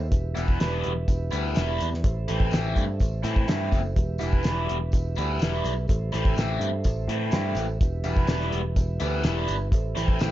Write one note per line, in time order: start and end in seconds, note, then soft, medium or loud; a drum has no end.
0.00 0.10 D#2 medium
0.00 3.91 E5 medium
0.10 0.34 E1 medium
0.10 2.01 G4 medium
0.10 2.01 B4 medium
0.10 kick loud
0.10 closed hi-hat medium
0.10 tambourine soft
0.35 0.58 E1 medium
0.35 0.58 E3 medium
0.35 0.59 G3 medium
0.35 0.59 B3 medium
0.35 0.59 E4 medium
0.35 closed hi-hat medium
0.35 tambourine medium
0.48 kick medium
0.59 0.82 E1 medium
0.59 0.91 E3 medium
0.59 0.91 G3 medium
0.59 0.91 B3 medium
0.59 0.91 E4 medium
0.59 snare loud
0.59 closed hi-hat medium
0.59 tambourine medium
0.84 1.07 E1 medium
0.84 closed hi-hat medium
1.08 1.30 E1 medium
1.08 kick medium
1.08 closed hi-hat medium
1.08 tambourine medium
1.30 1.54 D2 medium
1.30 1.54 E3 medium
1.30 1.55 G3 medium
1.30 1.55 B3 medium
1.30 1.56 E4 loud
1.30 closed hi-hat medium
1.30 tambourine medium
1.54 1.79 E1 medium
1.54 1.87 E3 medium
1.54 1.87 G3 medium
1.54 1.87 B3 medium
1.54 1.88 E4 medium
1.54 snare loud
1.54 closed hi-hat medium
1.54 tambourine medium
1.78 2.03 E2 medium
1.78 closed hi-hat medium
1.78 tambourine medium
1.94 snare soft
2.04 2.26 A1 medium
2.04 3.94 A4 medium
2.04 3.95 C5 medium
2.04 kick loud
2.04 closed hi-hat medium
2.04 tambourine soft
2.28 2.51 A1 medium
2.28 2.51 E3 medium
2.28 2.51 A3 medium
2.28 2.52 C4 medium
2.28 2.52 E4 medium
2.28 closed hi-hat medium
2.28 tambourine medium
2.40 kick medium
2.51 2.74 A1 medium
2.51 2.83 E3 medium
2.51 2.84 A3 medium
2.51 2.84 C4 medium
2.51 2.84 E4 medium
2.51 snare loud
2.51 closed hi-hat medium
2.51 tambourine medium
2.75 2.98 G2 medium
2.75 kick medium
2.75 closed hi-hat medium
2.75 tambourine soft
3.00 3.23 A1 medium
3.00 kick medium
3.00 closed hi-hat medium
3.00 tambourine medium
3.23 3.46 A2 medium
3.23 3.47 E3 medium
3.23 3.47 A3 medium
3.23 3.48 C4 medium
3.23 3.48 E4 loud
3.23 closed hi-hat medium
3.23 tambourine medium
3.36 kick medium
3.48 3.70 G2 medium
3.48 3.79 E3 medium
3.48 3.80 A3 medium
3.48 3.80 C4 medium
3.48 3.80 E4 medium
3.48 snare loud
3.48 closed hi-hat medium
3.48 tambourine medium
3.72 3.94 F#1 medium
3.72 kick medium
3.72 closed hi-hat medium
3.72 tambourine medium
3.95 4.19 E1 medium
3.95 5.86 G4 medium
3.95 5.86 B4 medium
3.95 5.86 E5 medium
3.95 kick loud
3.95 closed hi-hat medium
3.95 tambourine soft
4.18 4.43 E1 medium
4.18 4.43 E3 medium
4.18 4.43 G3 medium
4.18 4.44 B3 medium
4.18 4.44 E4 medium
4.18 closed hi-hat medium
4.18 tambourine medium
4.33 kick medium
4.43 4.67 E1 medium
4.43 4.76 E3 medium
4.43 4.76 G3 medium
4.43 4.76 B3 medium
4.43 4.76 E4 medium
4.43 snare loud
4.43 closed hi-hat medium
4.43 tambourine medium
4.69 4.91 E1 medium
4.69 closed hi-hat medium
4.92 5.15 E1 medium
4.92 kick medium
4.92 closed hi-hat medium
4.92 tambourine medium
5.15 5.39 D2 medium
5.15 5.40 E3 medium
5.15 5.40 G3 medium
5.15 5.40 B3 medium
5.15 5.41 E4 medium
5.15 closed hi-hat medium
5.15 tambourine medium
5.39 5.62 E1 medium
5.39 5.72 E3 medium
5.39 5.72 G3 medium
5.39 5.72 B3 medium
5.39 5.72 E4 medium
5.39 snare loud
5.39 closed hi-hat medium
5.39 tambourine medium
5.64 5.86 B1 medium
5.64 closed hi-hat medium
5.64 tambourine medium
5.88 6.11 A1 medium
5.88 7.78 A4 medium
5.88 7.79 C5 medium
5.88 9.68 E5 medium
5.88 kick loud
5.88 closed hi-hat medium
5.88 tambourine soft
6.12 6.35 A1 medium
6.12 6.36 E3 medium
6.12 6.37 A3 medium
6.12 6.37 C4 medium
6.12 6.37 E4 medium
6.12 closed hi-hat medium
6.12 tambourine medium
6.25 kick medium
6.36 6.58 A1 medium
6.36 6.68 E3 medium
6.36 6.68 A3 medium
6.36 6.68 C4 medium
6.36 6.69 E4 medium
6.36 snare loud
6.36 closed hi-hat medium
6.36 tambourine medium
6.60 6.82 G2 medium
6.60 closed hi-hat medium
6.84 7.07 A1 medium
6.84 kick medium
6.84 closed hi-hat medium
6.84 tambourine medium
7.08 7.30 A2 medium
7.08 7.32 E3 medium
7.08 7.32 A3 medium
7.08 7.32 C4 medium
7.08 7.33 E4 medium
7.08 closed hi-hat medium
7.31 7.54 G2 medium
7.31 7.64 E3 medium
7.31 7.64 A3 medium
7.31 7.64 C4 medium
7.31 7.64 E4 medium
7.31 snare loud
7.31 closed hi-hat medium
7.31 tambourine loud
7.55 7.78 A1 medium
7.55 closed hi-hat medium
7.55 tambourine medium
7.80 8.02 E1 medium
7.80 9.71 G4 medium
7.80 9.70 B4 medium
7.80 kick loud
7.80 closed hi-hat medium
7.80 tambourine soft
8.04 8.26 E1 medium
8.04 8.27 E3 medium
8.04 8.28 G3 medium
8.04 8.28 B3 medium
8.04 8.28 E4 medium
8.04 closed hi-hat medium
8.04 tambourine medium
8.17 kick medium
8.27 8.50 E1 medium
8.27 8.59 E3 medium
8.27 8.60 G3 medium
8.27 8.60 B3 medium
8.27 8.60 E4 medium
8.27 snare loud
8.27 closed hi-hat medium
8.27 tambourine loud
8.41 snare soft
8.52 8.75 E1 medium
8.52 closed hi-hat medium
8.76 8.98 E1 medium
8.76 kick medium
8.76 closed hi-hat medium
8.76 tambourine medium
9.00 9.22 D2 medium
9.00 9.22 E3 medium
9.00 9.22 G3 medium
9.00 9.22 B3 medium
9.00 9.23 E4 medium
9.00 closed hi-hat medium
9.00 tambourine medium
9.23 9.46 E1 medium
9.23 9.55 E3 medium
9.23 9.55 G3 medium
9.23 9.55 B3 medium
9.23 9.55 E4 medium
9.23 snare loud
9.23 closed hi-hat medium
9.23 tambourine medium
9.48 9.70 G1 medium
9.48 closed hi-hat medium
9.48 tambourine medium
9.72 9.94 A1 medium
9.72 10.31 A4 medium
9.72 10.31 C5 medium
9.72 10.31 E5 medium
9.72 kick loud
9.72 closed hi-hat medium
9.72 tambourine soft
9.95 10.18 A1 medium
9.95 10.18 E3 medium
9.95 10.19 A3 medium
9.95 10.19 C4 medium
9.95 10.19 E4 medium
9.95 closed hi-hat medium
9.95 tambourine medium
10.08 kick medium
10.19 10.31 A1 medium
10.19 10.31 E3 medium
10.19 10.31 A3 medium
10.19 10.31 C4 medium
10.19 10.31 E4 medium
10.19 snare loud
10.19 closed hi-hat medium
10.19 tambourine loud